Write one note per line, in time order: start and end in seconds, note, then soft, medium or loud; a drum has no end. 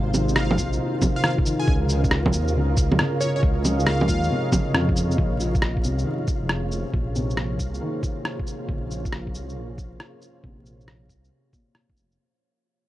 0.00 0.59 G#1 loud
0.00 0.51 A#2 medium
0.00 1.01 C3 medium
0.00 1.17 D#3 medium
0.00 1.64 D#4 medium
0.00 5.17 F4 medium
0.00 5.13 A#4 medium
0.00 1.64 C5 medium
0.00 5.17 F5 medium
0.14 low bongo soft
0.14 cabasa medium
0.14 shaker medium
0.29 shaker soft
0.36 0.72 F5 medium
0.36 cross-stick loud
0.51 low bongo medium
0.58 0.79 A#1 loud
0.58 kick medium
0.58 cabasa medium
0.58 shaker medium
0.73 shaker soft
1.01 1.85 C3 medium
1.01 kick loud
1.01 low bongo medium
1.01 cabasa medium
1.01 shaker medium
1.16 1.21 F5 medium
1.21 1.44 D#3 medium
1.21 1.33 F5 medium
1.21 cross-stick loud
1.34 2.12 F3 medium
1.38 kick loud
1.45 1.86 D#3 medium
1.45 cabasa medium
1.45 shaker medium
1.59 1.73 G#5 medium
1.67 2.34 C#2 loud
1.67 5.14 G#4 medium
1.67 5.14 C#5 medium
1.67 5.14 D#5 medium
1.67 5.14 F5 medium
1.67 kick loud
1.89 cabasa medium
1.89 shaker medium
2.04 kick loud
2.04 shaker soft
2.11 cross-stick loud
2.26 kick medium
2.26 low bongo medium
2.33 2.56 D#2 loud
2.33 cabasa medium
2.33 shaker medium
2.48 shaker soft
2.55 2.98 C#2 loud
2.55 2.98 C#3 medium
2.77 kick loud
2.77 cabasa medium
2.77 shaker medium
2.92 low bongo medium
2.99 4.51 C#3 medium
2.99 cross-stick loud
3.21 3.30 C#5 medium
3.21 cabasa medium
3.21 shaker medium
3.36 3.40 C#5 medium
3.43 4.10 C#2 loud
3.43 kick loud
3.65 low bongo soft
3.65 cabasa medium
3.65 shaker medium
3.79 shaker soft
3.86 5.36 G#3 medium
3.86 4.07 F5 medium
3.86 cross-stick loud
4.01 low bongo medium
4.08 4.29 D#2 loud
4.08 5.36 F3 medium
4.08 4.71 F5 loud
4.08 kick medium
4.08 cabasa medium
4.08 shaker medium
4.23 shaker soft
4.30 5.36 C3 medium
4.52 5.36 C#3 medium
4.52 kick loud
4.52 low bongo medium
4.52 cabasa medium
4.52 shaker medium
4.74 4.95 F2 loud
4.74 cross-stick loud
4.89 kick loud
4.96 5.17 F2 loud
4.96 cabasa medium
4.96 shaker medium
5.11 shaker soft
5.18 5.85 A#1 medium
5.18 12.15 A#3 medium
5.18 12.20 F4 medium
5.18 12.15 F4 medium
5.18 12.15 G#4 medium
5.18 12.15 C5 medium
5.18 12.15 C#5 medium
5.18 12.20 F5 medium
5.18 kick loud
5.40 6.15 F3 medium
5.40 shaker medium
5.55 kick loud
5.55 shaker soft
5.62 cross-stick loud
5.77 kick medium
5.84 6.04 C2 loud
5.84 7.14 C3 medium
5.84 shaker medium
5.99 shaker soft
6.03 7.67 D#3 soft
6.16 7.79 F3 medium
6.27 kick loud
6.27 shaker medium
6.42 6.84 F1 medium
6.49 cross-stick loud
6.72 shaker medium
6.93 7.61 A#1 loud
6.93 kick loud
7.15 8.84 C3 medium
7.15 shaker medium
7.30 shaker soft
7.37 cross-stick loud
7.59 7.80 C2 loud
7.59 kick medium
7.59 shaker medium
7.74 shaker soft
7.81 9.49 D#3 medium
8.03 kick loud
8.03 shaker medium
8.25 cross-stick loud
8.40 kick loud
8.47 shaker medium
8.69 9.36 A#1 medium
8.69 10.37 C#3 soft
8.69 kick loud
8.91 shaker medium
9.05 kick loud
9.05 shaker soft
9.12 cross-stick loud
9.27 kick medium
9.34 9.57 C2 loud
9.34 shaker medium
9.49 shaker soft
9.56 9.99 A#1 loud
9.78 kick loud
9.78 shaker medium
10.00 cross-stick loud
10.22 shaker medium
10.43 11.11 A#1 medium
10.43 12.12 C3 medium
10.43 kick loud
10.66 shaker medium
10.81 shaker soft
10.88 cross-stick medium
11.09 11.30 C2 loud
11.09 kick medium
11.09 shaker medium
11.24 shaker soft
11.53 12.37 A#2 medium
11.53 kick medium
11.53 shaker soft
11.75 cross-stick loud
11.90 11.96 F1 medium
11.90 kick loud
11.97 12.17 F1 medium
11.97 shaker soft
12.12 shaker soft